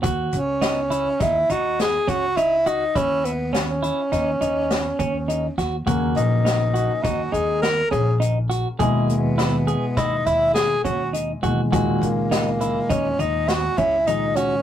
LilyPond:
<<
  \new Staff \with { instrumentName = "Tenor saxophone" } { \time 5/4 \key ges \mixolydian \tempo 4 = 103 r8 des'4. fes'8 ges'8 aes'8 ges'8 fes'8 ees'8 | des'8 ces'8 des'2.~ des'8 r8 | r8 ees'4. ges'8 aes'8 bes'8 aes'8 r4 | r8 b4. dis'8 e'8 gis'8 ges'8 r4 |
r8 bes4. des'8 ees'8 ges'8 fes'8 ees'8 des'8 | }
  \new Staff \with { instrumentName = "Clean electric guitar" } { \time 5/4 \key ges \mixolydian ges'4 ees'8 fes'8 ees'8 ees'4 des'8 ees'8 ges'8 | fes'4 des'8 fes'8 ees'8 ees'4 des'8 ees'8 ges'8 | ges'4 ees'8 ges'8 ees'8 ees'4 des'8 ees'8 ges'8 | gis'4 e'8 gis'8 e'8 e'4 des'8 dis'8 ges'8 |
ges'4 ees'8 fes'8 ees'8 ees'4 des'8 ees'8 ges'8 | }
  \new Staff \with { instrumentName = "Grand piano" } { \clef bass \time 5/4 \key ges \mixolydian r1 r4 | r1 r4 | <des ges bes>1~ <des ges bes>4 | <b, gis e'>1~ <b, gis e'>8 <b, e gis>8 |
<bes, ees aes>1 <bes, ees aes>4 | }
  \new Staff \with { instrumentName = "Upright bass" } { \clef bass \time 5/4 \key ges \mixolydian ees,8 des,4. ees,8 ees,4 des,4. | ees,2 ees,8 ees,4 ees,4 ees,8 | ees,8 bes,,4. ees,8 ees,4 bes,,4. | dis,2 dis,8 dis,4 dis,4 dis,8 |
ees,8 des,4. ees,8 ees,4 des,4. | }
  \new DrumStaff \with { instrumentName = "Drums" } \drummode { \time 5/4 <hh bd>8 hh8 <hh sn>8 hh8 <hh bd sn>8 hh8 <hh sn>8 <hh bd>8 hh8 hh8 | <hh bd>8 hh8 <hh sn>8 hh8 <hh sn>8 hh8 <hh sn>8 <hh bd>8 hh8 <hh sn>8 | <hh bd>8 hh8 <hh sn>8 hh8 <hh bd sn>8 hh8 <hh sn>8 <hh bd>8 hh8 hh8 | <hh bd>8 hh8 <hh sn>8 hh8 <hh bd sn>8 hh8 <hh sn>8 <hh bd>8 hh8 hh8 |
<hh bd>8 hh8 <hh sn>8 hh8 <hh bd>8 hh8 <hh sn>8 <hh bd>8 hh8 hh8 | }
>>